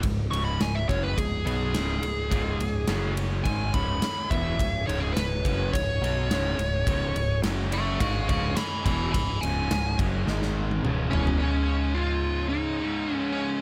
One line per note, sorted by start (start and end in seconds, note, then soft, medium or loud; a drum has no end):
0.03 0.30 C#1 medium
0.03 0.26 C#2 medium
0.03 0.26 G#2 medium
0.03 kick medium
0.03 ride medium
0.31 0.58 C#1 medium
0.31 0.58 C#2 medium
0.31 0.59 G#2 medium
0.31 0.59 C#3 loud
0.31 0.44 C#6 loud
0.31 ride medium
0.45 0.59 B5 medium
0.60 0.87 C#1 medium
0.60 0.83 C#2 medium
0.60 0.83 G#2 medium
0.60 0.75 G#5 loud
0.60 snare loud
0.60 ride medium
0.75 0.89 E5 medium
0.88 1.15 F#1 medium
0.88 1.16 F#2 medium
0.88 1.16 C#3 loud
0.88 1.16 F#3 loud
0.88 1.03 C#5 medium
0.88 kick loud
0.88 ride medium
1.03 1.18 B4 medium
1.16 1.44 C#1 medium
1.16 1.40 C#2 medium
1.16 1.40 G#2 medium
1.16 1.45 G#4 medium
1.16 kick medium
1.16 ride medium
1.45 1.72 B1 medium
1.45 1.73 B2 medium
1.45 1.73 F#3 medium
1.45 1.74 B3 medium
1.45 3.13 G#4 loud
1.45 ride medium
1.73 2.00 C#1 medium
1.73 2.01 C#2 medium
1.73 2.01 G#2 medium
1.73 2.02 C#3 loud
1.73 snare loud
1.73 ride medium
2.02 2.29 C#1 medium
2.02 2.25 C#2 medium
2.02 2.26 G#2 medium
2.02 ride medium
2.30 2.58 C#1 medium
2.30 2.58 C#2 medium
2.30 2.59 G#2 medium
2.30 2.59 C#3 medium
2.30 10.23 C#4 medium
2.30 10.25 G#4 medium
2.30 2.87 D#5 medium
2.30 kick loud
2.30 ride medium
2.59 2.86 C#1 medium
2.59 2.82 C#2 medium
2.59 2.83 G#2 medium
2.59 ride medium
2.87 3.41 F#1 medium
2.87 3.43 F#2 medium
2.87 3.44 C#3 medium
2.87 3.45 F#3 medium
2.87 3.44 F#3 loud
2.87 snare loud
2.87 ride medium
3.17 ride medium
3.44 3.72 G#1 medium
3.44 3.72 G#2 medium
3.44 3.72 D#3 medium
3.44 3.73 G#3 medium
3.44 3.72 G#5 loud
3.44 kick loud
3.44 ride medium
3.48 7.41 C#5 medium
3.74 4.00 C#1 medium
3.74 4.01 C#2 medium
3.74 4.02 G#2 medium
3.74 4.02 C#3 medium
3.74 4.29 B5 medium
3.74 kick medium
3.74 ride medium
4.02 muted picked electric bass stroke soft
4.02 muted distorted electric guitar stroke medium
4.02 muted overdriven electric guitar stroke medium
4.02 snare loud
4.02 ride loud
4.30 4.57 E1 loud
4.30 4.59 E2 medium
4.30 4.59 B2 medium
4.30 4.59 E3 loud
4.30 4.86 E5 loud
4.30 kick loud
4.30 ride medium
4.59 4.86 C#1 medium
4.59 4.82 C#2 medium
4.59 4.82 G#2 medium
4.59 kick medium
4.59 ride medium
4.87 5.14 C#1 medium
4.87 5.16 C#2 medium
4.87 5.16 G#2 medium
4.87 5.16 C#3 loud
4.87 5.01 C#5 medium
4.87 ride medium
5.00 5.13 G#4 medium
5.14 5.43 C#1 medium
5.14 5.39 C#2 medium
5.14 5.40 G#2 medium
5.14 5.70 B4 loud
5.14 snare loud
5.14 ride medium
5.45 5.71 F#1 medium
5.45 5.73 F#2 loud
5.45 5.73 C#3 loud
5.45 5.73 F#3 loud
5.45 kick loud
5.45 ride medium
5.73 6.00 C#1 medium
5.73 5.97 C#2 medium
5.73 5.97 G#2 medium
5.73 7.40 C#5 loud
5.73 kick medium
5.73 ride medium
6.01 6.28 B1 medium
6.01 6.29 B2 medium
6.01 6.30 F#3 loud
6.01 6.30 B3 medium
6.01 ride medium
6.28 6.56 C#1 medium
6.28 6.58 C#2 medium
6.28 6.58 G#2 medium
6.28 6.58 C#3 medium
6.28 snare loud
6.28 ride medium
6.57 6.84 C#1 medium
6.57 6.82 C#2 medium
6.57 6.82 G#2 medium
6.57 ride medium
6.86 7.13 C#1 medium
6.86 7.14 C#2 medium
6.86 7.15 G#2 loud
6.86 7.15 C#3 medium
6.86 kick loud
6.86 ride medium
7.15 7.42 C#1 medium
7.15 7.39 C#2 medium
7.15 7.39 G#2 medium
7.15 ride medium
7.43 7.97 F#1 medium
7.43 8.00 F#2 loud
7.43 8.01 C#3 loud
7.43 8.00 F#3 medium
7.43 8.01 F#3 loud
7.43 snare loud
7.43 ride loud
7.72 8.01 E5 medium
7.72 8.00 C#6 medium
7.72 ride medium
8.00 8.27 G#1 medium
8.00 8.29 G#2 medium
8.00 8.29 D#3 loud
8.00 8.29 G#3 loud
8.00 10.26 D#5 medium
8.00 8.27 F5 medium
8.00 8.28 C#6 medium
8.00 kick loud
8.00 ride medium
8.29 8.56 C#1 medium
8.29 8.57 C#2 medium
8.29 8.58 G#2 medium
8.29 8.58 C#3 loud
8.29 8.56 F5 medium
8.29 8.57 C#6 loud
8.29 kick medium
8.29 ride medium
8.57 8.84 G#5 medium
8.57 8.84 B5 loud
8.57 muted distorted electric guitar stroke medium
8.57 muted picked electric bass stroke soft
8.57 muted overdriven electric guitar stroke medium
8.57 snare loud
8.57 ride loud
8.85 9.12 E1 loud
8.85 9.14 E2 medium
8.85 9.14 B2 medium
8.85 9.14 E3 loud
8.85 9.10 G#5 medium
8.85 9.12 B5 loud
8.85 kick loud
8.85 ride medium
9.12 9.41 C#1 medium
9.12 9.37 C#2 medium
9.12 9.38 G#2 medium
9.12 9.39 G#5 medium
9.12 9.41 B5 loud
9.12 kick medium
9.12 ride medium
9.41 9.69 C#1 medium
9.41 9.70 C#2 medium
9.41 9.71 G#2 loud
9.41 9.71 C#3 loud
9.41 9.97 G#5 loud
9.41 ride medium
9.70 9.97 C#1 medium
9.70 9.94 C#2 medium
9.70 9.95 G#2 medium
9.70 snare loud
9.70 ride medium
9.99 10.26 F#1 medium
9.99 10.28 F#2 medium
9.99 10.28 C#3 loud
9.99 10.29 F#3 loud
9.99 kick loud
9.99 ride medium
10.26 10.80 G#1 medium
10.26 10.84 G#2 medium
10.26 10.84 D#3 loud
10.26 10.84 G#3 medium
10.26 10.84 G#3 loud
10.26 10.83 D#4 medium
10.26 10.84 A#4 medium
10.26 snare medium
10.42 snare medium
10.71 high tom medium
10.83 11.10 C#1 medium
10.83 11.12 C#2 medium
10.83 11.12 G#2 loud
10.83 11.12 C#3 loud
10.83 11.37 C#4 medium
10.83 11.37 G#4 medium
10.83 11.37 D#5 medium
10.83 mid tom medium
11.09 11.38 E1 loud
11.09 11.39 E2 loud
11.09 11.39 B2 loud
11.09 11.38 C#4 loud
11.13 11.39 E2 medium
11.13 11.41 B2 loud
11.13 11.41 E3 loud
11.13 floor tom loud
11.27 floor tom medium
11.38 12.84 C#2 medium
11.38 12.81 G#2 medium
11.38 13.61 C#4 medium
11.38 11.99 C#4 loud
11.38 13.61 G#4 medium
11.38 13.61 D#5 medium
11.42 12.81 C#3 medium
11.95 12.49 F4 loud
12.49 13.14 D#4 loud
12.81 13.08 C#2 medium
12.81 13.09 G#2 medium
12.81 13.11 C#3 medium
13.09 13.61 C#2 medium
13.09 13.61 G#2 medium
13.09 13.61 C#3 medium
13.14 13.32 C#4 loud
13.32 13.61 C#4 loud